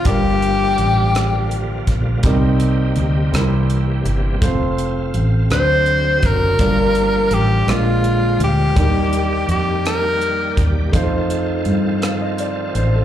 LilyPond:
<<
  \new Staff \with { instrumentName = "Tenor saxophone" } { \time 6/8 \key g \minor \tempo 4. = 55 g'2~ g'8 r8 | r2. | r4. c''4 bes'8~ | bes'4 g'8 f'4 g'8~ |
g'4 g'8 bes'4 r8 | r2. | }
  \new Staff \with { instrumentName = "Grand piano" } { \time 6/8 \key g \minor <g d' f' bes'>2. | <g c' ees' bes'>4. <g c' d' e' bes'>4. | <a c' f' c''>4. <fis d' fis' c''>4. | <g d' f' a' bes'>4. <aes d' f' bes'>4. |
<ges g d' ees' bes'>2. | <a ees' f' c''>2. | }
  \new Staff \with { instrumentName = "Grand piano" } { \clef bass \time 6/8 \key g \minor g,4. r4. | c4. c4. | r4. d4. | g,4. bes,4. |
ees4. r4. | r4. f''16 ees''16 d''8 c''16 a'16 | }
  \new Staff \with { instrumentName = "Tonewheel organ" } { \time 6/8 \key g \minor << { <f f'>2. | g'2. | f'4. <fis fis'>4. | <f f'>2. |
<g g'>2. | <f f'>2. | } \\ { bes2. | c'2.~ | c'2. | bes2. |
d''2. | c'2. | } >> }
  \new Staff \with { instrumentName = "Tonewheel organ" } { \clef bass \time 6/8 \key g \minor << { g2.~ | g2. | r2. | g4. aes4. |
r2. | a'2. | } \\ { d2. | ees'4. e4. | r4. d4.~ | d2. |
ees2.~ | ees2. | } >> }
  \new Staff \with { instrumentName = "Fingered electric bass" } { \clef bass \time 6/8 \key g \minor g,,4 a,,4. bes,,8 | c,4 d,8 c,4 g,,8 | f,,4 a,,8 d,4 fis,,8 | g,,4 a,,8 bes,,4 d,8 |
ees,4 f,4. ees,8 | f,4 g,4. a,,8 | }
  \new DrumStaff \with { instrumentName = "Drums" } \drummode { \time 6/8 <hh bd>8 hh8 hh8 <hh ss>8 hh8 <hh bd>8 | <hh bd>8 hh8 hh8 <hh ss>8 hh8 hh8 | <hh bd>8 hh8 hh8 <hh ss>8 hh8 <hh bd>8 | <hh bd>8 hh8 hh8 <hh ss>8 hh8 hh8 |
<hh bd>8 hh8 hh8 <hh ss>8 hh8 <hh bd>8 | <hh bd>8 hh8 hh8 <hh ss>8 hh8 hh8 | }
>>